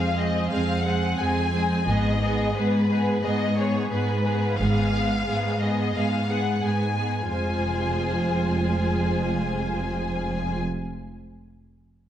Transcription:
0.00 0.42 F2 soft
0.00 0.15 G#3 soft
0.00 0.14 C4 soft
0.00 0.15 G#4 soft
0.00 0.14 F5 medium
0.16 0.49 G#3 soft
0.16 0.49 C4 soft
0.16 0.50 G#4 soft
0.16 0.50 D#5 medium
0.50 1.10 F2 soft
0.50 0.83 G#3 soft
0.50 0.83 C4 soft
0.50 0.84 G#4 soft
0.50 0.83 F5 medium
0.84 1.18 G#3 soft
0.84 1.18 C4 soft
0.84 1.18 G#4 soft
0.84 1.18 F#5 medium
1.19 1.78 F2 soft
1.19 1.52 G#3 soft
1.19 1.52 C4 soft
1.19 1.53 G#4 soft
1.19 1.87 G#5 medium
1.53 1.86 G#3 soft
1.53 1.86 C4 soft
1.53 1.86 G#4 soft
1.87 2.44 G#1 soft
1.87 2.46 G#2 soft
1.87 2.19 G#3 soft
1.87 2.20 B3 soft
1.87 2.20 G#4 soft
1.87 2.55 D#5 medium
2.21 2.53 G#3 soft
2.21 2.53 B3 soft
2.21 2.55 G#4 soft
2.55 3.15 G#2 soft
2.55 2.88 G#3 soft
2.55 2.88 B3 soft
2.55 2.88 G#4 soft
2.55 3.23 B4 medium
2.89 3.22 G#3 soft
2.89 3.22 B3 soft
2.89 3.21 G#4 soft
3.22 3.83 G#2 medium
3.22 3.56 G#3 soft
3.22 3.56 B3 soft
3.22 3.56 G#4 soft
3.22 3.57 D#5 medium
3.57 3.90 G#3 soft
3.57 3.90 B3 soft
3.57 3.90 G#4 soft
3.57 3.91 C#5 medium
3.89 4.51 G#2 medium
3.89 4.24 G#3 soft
3.89 4.24 B3 soft
3.89 4.23 G#4 soft
3.89 4.57 B4 medium
4.24 4.58 G#3 soft
4.24 4.58 B3 soft
4.24 4.58 G#4 soft
4.58 5.16 G#1 soft
4.58 5.19 G#2 soft
4.58 4.91 G#3 soft
4.58 4.92 B3 soft
4.58 4.91 G#4 soft
4.58 5.60 F5 medium
4.92 5.26 G#3 soft
4.92 5.26 B3 soft
4.92 5.26 G#4 soft
5.27 5.87 G#2 soft
5.27 5.60 G#3 soft
5.27 5.60 B3 soft
5.27 5.61 G#4 soft
5.61 5.95 G#3 soft
5.61 5.94 B3 soft
5.61 5.94 G#4 soft
5.61 5.95 D#5 soft
5.95 6.55 G#2 soft
5.95 6.29 G#3 soft
5.95 6.28 B3 soft
5.95 6.29 G#4 soft
5.95 6.29 F5 soft
6.30 6.63 G#3 soft
6.30 6.62 B3 soft
6.30 6.62 G#4 soft
6.30 6.64 F#5 soft
6.63 7.23 G#2 soft
6.63 6.96 G#3 soft
6.63 6.96 B3 soft
6.63 6.96 G#4 soft
6.63 7.31 G#5 soft
6.97 7.31 G#3 soft
6.97 7.31 B3 soft
6.97 7.30 G#4 soft
7.31 10.59 F1 soft
7.31 10.58 F2 soft
7.31 10.59 G#3 soft
7.31 10.59 F4 soft
7.31 10.58 G#4 soft
7.31 10.58 C5 soft
7.31 10.59 G#5 soft

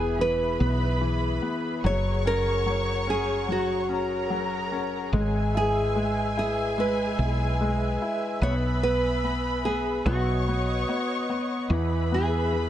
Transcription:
0.00 0.57 E1 loud
0.00 0.19 E3 medium
0.00 0.60 B3 medium
0.00 0.16 G#4 medium
0.00 0.18 G#4 medium
0.00 5.10 G#4 medium
0.00 1.82 B4 medium
0.00 1.82 E5 medium
0.00 0.16 G#5 loud
0.00 1.81 B5 medium
0.19 1.00 E3 medium
0.19 1.81 B4 medium
0.19 1.86 B4 loud
0.19 1.81 B5 medium
0.60 1.39 B1 medium
0.60 1.41 B3 medium
1.01 1.81 E3 medium
1.42 1.82 B3 medium
1.84 5.09 F#1 medium
1.84 2.65 F#3 medium
1.84 3.86 C#5 loud
1.84 5.10 C#5 medium
1.84 2.23 C#5 loud
1.84 5.10 F#5 medium
1.84 5.10 A#5 loud
1.84 3.86 C#6 loud
2.25 3.06 C#4 medium
2.25 3.10 A#4 loud
2.66 3.47 F#3 medium
3.07 3.87 C#4 medium
3.07 3.47 G#4 medium
3.48 4.29 F#3 medium
3.48 4.69 F#4 medium
3.89 4.70 C#4 medium
3.89 5.11 A#4 medium
3.89 5.11 A#5 loud
4.30 5.10 F#3 medium
4.72 5.12 C#4 medium
5.13 7.14 G#1 loud
5.13 5.94 G#3 medium
5.13 8.38 G#4 loud
5.13 10.02 B4 medium
5.13 10.02 E5 medium
5.13 8.38 G#5 medium
5.13 8.38 G#5 loud
5.13 8.38 E6 loud
5.55 6.36 E4 medium
5.55 6.38 G#4 medium
5.96 6.76 G#3 medium
6.37 7.18 E4 medium
6.37 6.80 G#4 medium
6.78 7.59 G#3 medium
6.78 8.43 B4 medium
7.19 7.97 B1 medium
7.19 8.00 E4 medium
7.61 8.40 G#3 medium
8.02 8.41 E4 medium
8.42 10.02 B1 loud
8.42 8.82 B3 medium
8.42 10.03 B4 medium
8.42 8.54 C#5 loud
8.42 10.05 G#5 medium
8.42 10.03 B5 loud
8.42 10.04 E6 medium
8.83 9.23 B3 medium
8.83 9.61 B4 loud
9.24 9.64 B3 medium
9.65 10.05 B3 medium
9.65 10.07 G#4 medium
10.05 10.84 B1 loud
10.05 10.47 B3 medium
10.05 11.25 F#4 medium
10.05 12.69 B4 medium
10.05 11.67 C#5 medium
10.05 11.69 D#5 medium
10.05 11.68 F#5 medium
10.05 11.67 C#6 loud
10.05 11.69 D#6 medium
10.48 10.87 B3 medium
10.89 11.28 B3 medium
11.30 11.69 B3 medium
11.69 12.69 E2 loud
11.69 12.51 E3 medium
11.69 12.69 B4 medium
11.69 12.69 E5 medium
11.69 12.69 G#5 medium
11.69 12.69 B5 loud
11.69 12.69 E6 medium
12.12 12.69 B3 medium
12.12 12.69 G#4 medium
12.53 12.69 E3 medium

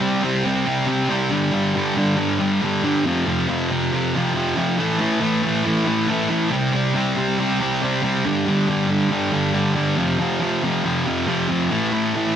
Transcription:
0.00 0.22 C3 medium
0.00 0.24 G3 medium
0.00 0.24 C4 medium
0.23 0.43 C3 medium
0.23 0.44 G3 medium
0.23 0.45 C4 medium
0.44 0.64 C3 medium
0.44 0.65 G3 medium
0.44 0.67 C4 loud
0.65 0.85 C3 medium
0.65 0.86 G3 medium
0.65 0.87 C4 medium
0.86 1.07 C3 medium
0.86 1.08 G3 medium
0.86 1.10 C4 loud
1.08 1.29 C3 medium
1.08 1.30 G3 medium
1.08 1.30 C4 loud
1.29 1.51 G2 loud
1.29 1.51 D3 loud
1.29 1.53 G3 loud
1.52 1.73 G2 medium
1.52 1.75 D3 medium
1.52 1.75 G3 medium
1.74 1.95 G2 medium
1.74 1.96 D3 medium
1.74 1.97 G3 loud
1.96 2.16 G2 medium
1.96 2.17 D3 medium
1.96 2.18 G3 loud
2.17 2.38 G2 loud
2.17 2.40 D3 loud
2.17 2.41 G3 loud
2.39 2.61 G2 medium
2.39 2.62 D3 medium
2.39 2.64 G3 loud
2.63 2.82 G2 medium
2.63 2.83 D3 loud
2.63 2.84 G3 loud
2.83 3.04 G2 loud
2.83 3.04 D3 loud
2.83 3.05 G3 loud
3.05 3.25 F2 loud
3.05 3.26 C3 loud
3.05 3.27 F3 loud
3.26 3.47 F2 medium
3.26 3.48 C3 medium
3.26 3.49 F3 medium
3.48 3.69 F2 medium
3.48 3.70 C3 medium
3.48 3.71 F3 medium
3.70 3.91 F2 medium
3.70 3.92 C3 medium
3.70 3.93 F3 loud
3.92 4.14 F2 medium
3.92 4.14 C3 loud
3.92 4.16 F3 loud
4.15 4.34 F2 medium
4.15 4.35 C3 medium
4.15 4.36 F3 loud
4.35 4.55 F2 medium
4.35 4.56 C3 loud
4.35 4.57 F3 loud
4.56 4.77 F2 loud
4.56 4.77 C3 medium
4.56 4.78 F3 loud
4.78 4.98 A2 loud
4.78 5.00 E3 loud
4.78 5.00 A3 loud
5.00 5.19 A2 medium
5.00 5.21 E3 medium
5.00 5.22 A3 loud
5.20 5.42 A2 medium
5.20 5.44 E3 loud
5.20 5.45 A3 medium
5.44 5.63 A2 medium
5.44 5.65 E3 medium
5.44 5.66 A3 medium
5.64 5.85 A2 medium
5.64 5.86 E3 loud
5.64 5.88 A3 loud
5.86 6.08 A2 medium
5.86 6.09 E3 medium
5.86 6.10 A3 medium
6.09 6.28 A2 medium
6.09 6.29 E3 medium
6.09 6.30 A3 loud
6.29 6.50 A2 medium
6.29 6.51 E3 loud
6.29 6.51 A3 loud
6.51 6.72 C3 loud
6.51 6.74 G3 loud
6.51 6.75 C4 loud
6.74 6.94 C3 medium
6.74 6.96 G3 medium
6.74 6.96 C4 medium
6.95 7.16 C3 loud
6.95 7.17 G3 medium
6.95 7.18 C4 medium
7.17 7.38 C3 medium
7.17 7.39 G3 medium
7.17 7.40 C4 medium
7.39 7.59 C3 loud
7.39 7.60 G3 loud
7.39 7.61 C4 loud
7.60 7.80 C3 medium
7.60 7.82 G3 medium
7.60 7.83 C4 medium
7.82 8.01 C3 medium
7.82 8.02 G3 medium
7.82 8.04 C4 loud
8.03 8.23 C3 loud
8.03 8.24 G3 loud
8.03 8.25 C4 loud
8.25 8.45 G2 loud
8.25 8.46 D3 loud
8.25 8.47 G3 loud
8.46 8.66 G2 medium
8.46 8.67 D3 medium
8.46 8.68 G3 loud
8.67 8.87 G2 medium
8.67 8.88 D3 medium
8.67 8.90 G3 loud
8.88 9.09 G2 medium
8.88 9.10 D3 loud
8.88 9.11 G3 medium
9.10 9.31 G2 medium
9.10 9.32 D3 medium
9.10 9.33 G3 loud
9.33 9.52 G2 medium
9.33 9.53 D3 medium
9.33 9.54 G3 medium
9.53 9.73 G2 medium
9.53 9.74 D3 loud
9.53 9.75 G3 medium
9.74 9.96 G2 medium
9.74 9.96 D3 loud
9.74 9.97 G3 loud
9.97 10.17 F2 loud
9.97 10.19 C3 loud
9.97 10.19 F3 loud
10.18 10.39 F2 medium
10.18 10.40 C3 medium
10.18 10.41 F3 medium
10.40 10.61 F2 medium
10.40 10.62 C3 medium
10.40 10.63 F3 loud
10.62 10.83 F2 medium
10.62 10.83 C3 medium
10.62 10.85 F3 medium
10.84 11.05 F2 medium
10.84 11.06 C3 loud
10.84 11.07 F3 loud
11.06 11.26 F2 medium
11.06 11.27 C3 medium
11.06 11.27 F3 loud
11.27 11.48 F2 medium
11.27 11.50 C3 medium
11.27 11.51 F3 loud
11.49 11.69 F2 loud
11.49 11.70 C3 loud
11.49 11.71 F3 loud
11.70 11.90 A2 loud
11.70 11.92 E3 loud
11.70 11.93 A3 loud
11.92 12.13 A2 medium
11.92 12.15 E3 medium
11.92 12.16 A3 medium
12.15 12.35 A2 medium
12.15 12.36 E3 medium
12.15 12.36 A3 medium

